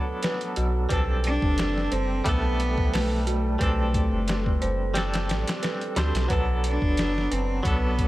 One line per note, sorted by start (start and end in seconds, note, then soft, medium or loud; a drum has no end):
0.00 0.86 F#3 medium
0.00 0.87 B3 medium
0.00 0.88 D4 medium
0.00 0.88 A4 medium
0.00 6.31 A4 medium
0.00 0.23 B4 medium
0.23 0.55 B4 medium
0.23 snare loud
0.23 closed hi-hat medium
0.41 closed hi-hat soft
0.56 0.87 B1 loud
0.56 0.88 F#4 medium
0.56 closed hi-hat medium
0.89 1.39 B1 loud
0.89 2.21 G3 loud
0.89 2.22 C4 medium
0.89 2.23 D4 medium
0.89 1.89 B4 medium
0.89 kick loud
0.89 closed hi-hat medium
0.94 2.23 A4 loud
1.24 1.95 D4 loud
1.24 closed hi-hat medium
1.42 1.89 F#1 loud
1.42 kick medium
1.58 snare loud
1.58 closed hi-hat medium
1.78 snare soft
1.92 2.22 F#1 loud
1.92 2.29 C4 loud
1.92 2.12 C5 medium
1.92 closed hi-hat medium
2.24 3.58 B1 medium
2.24 3.56 G3 medium
2.24 3.57 A3 medium
2.24 2.97 B3 loud
2.24 3.58 D4 medium
2.24 kick loud
2.24 closed hi-hat medium
2.29 3.58 A4 loud
2.60 closed hi-hat medium
2.78 kick medium
2.93 3.28 A3 medium
2.93 3.25 B4 medium
2.93 snare loud
2.93 open hi-hat medium
3.13 snare soft
3.27 5.26 A3 loud
3.27 3.57 F#4 medium
3.27 closed hi-hat medium
3.59 4.09 B1 loud
3.59 4.91 G3 medium
3.59 4.92 C4 medium
3.59 4.92 D4 medium
3.59 4.58 B4 medium
3.59 kick loud
3.59 closed hi-hat medium
3.63 4.93 A4 loud
3.94 kick medium
3.94 closed hi-hat medium
4.12 4.58 F#1 loud
4.28 snare loud
4.28 closed hi-hat medium
4.46 kick medium
4.62 5.31 F#1 loud
4.62 4.82 C5 medium
4.62 closed hi-hat medium
4.94 5.93 G3 medium
4.94 5.93 C4 medium
4.94 5.94 D4 medium
4.94 5.95 A4 loud
4.94 snare loud
4.94 closed hi-hat medium
5.14 snare loud
5.14 closed hi-hat medium
5.29 5.45 A1 medium
5.29 snare loud
5.29 closed hi-hat medium
5.47 snare loud
5.47 closed hi-hat medium
5.63 5.95 B4 medium
5.63 snare loud
5.63 closed hi-hat medium
5.81 closed hi-hat soft
5.96 6.12 D2 medium
5.96 6.26 G3 medium
5.96 6.27 C4 medium
5.96 6.27 D4 medium
5.96 6.27 F#4 medium
5.96 6.27 C5 medium
5.96 snare loud
5.96 closed hi-hat medium
6.14 6.28 B1 medium
6.14 snare loud
6.14 closed hi-hat medium
6.28 6.79 B1 medium
6.28 7.60 F#3 loud
6.28 7.61 B3 medium
6.28 7.62 D4 medium
6.28 7.28 B4 medium
6.28 8.08 D5 medium
6.28 kick loud
6.28 closed hi-hat medium
6.33 7.63 A4 loud
6.64 7.35 D4 loud
6.64 closed hi-hat medium
6.82 7.28 F#1 loud
6.82 kick medium
6.97 snare loud
6.97 closed hi-hat medium
7.18 snare soft
7.31 7.61 F#1 loud
7.31 7.68 C4 loud
7.31 7.52 B4 medium
7.31 closed hi-hat medium
7.63 8.08 B1 medium
7.63 8.08 F#3 loud
7.63 8.08 B3 medium
7.63 8.08 B3 loud
7.63 8.08 D4 medium
7.63 kick loud
7.63 closed hi-hat medium
7.68 8.08 A4 loud
7.99 kick medium
7.99 closed hi-hat medium